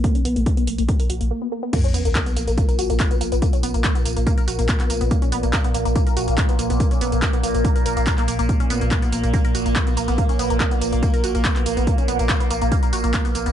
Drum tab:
CC |----------------|x---------------|----------------|----------------|
HH |xxoxxxooxoox----|xxoxxxoxxxoxxxox|xxoxxxoxxxoxxxox|xxoxxxoxxxoxxxox|
TB |----------------|xxxxxxxxxxxxxxxx|xxxxxxxxxxxxxxxx|xxxxxxxxxxxxxxxx|
CP |----------------|----x-------x---|----x-------xx--|----x-------x---|
BD |o---o---o-------|o---o---o---o---|o---o---o---o---|o---o---o---o---|

CC |----------------|----------------|----------------|----------------|
HH |xxoxxxoxxxoxxxox|xxoxxxoxxxoxxxox|xxoxxxoxxxoxxxox|xxoxxxoxxxoxxxox|
TB |xxxxxxxxxxxxxxxx|xxxxxxxxxxxxxxxx|xxxxxxxxxxxxxxxx|xxxxxxxxxxxxxxxx|
CP |----x-------xx--|----x-------x---|----x-------xx--|----x-------x---|
BD |o---o---o---o---|o---o---o---o---|o---o---o---o---|o---o---o---o---|